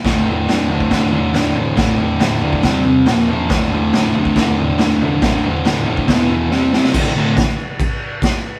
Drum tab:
CC |----------------|----------------|----------------|----------------|
SD |o---o---o---o---|o---o---o---o---|o---o---o---o---|o---o---o---o-oo|
FT |o-o-o-o-o-o-o-o-|o-o-o-o-o-o-o-o-|o-o-o-o-o-o-o-o-|o-o-o-o-o-o-----|
BD |o------oo-------|o------oo-------|o------oo-------|o------oo-------|

CC |x---x---x---x---|
SD |----o-------o---|
FT |----------------|
BD |o---o---o---o---|